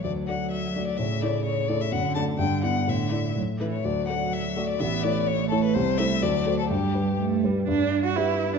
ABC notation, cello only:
X:1
M:2/4
L:1/16
Q:1/4=126
K:D
V:1 name="Cello" clef=bass
F,8 | C,8 | D,4 D,4 | D,4 F,2 E,2 |
F,8 | B,4 A,4 | [K:G] G,4 F,4 | G,4 A,2 G,2 |
D3 F E3 D |]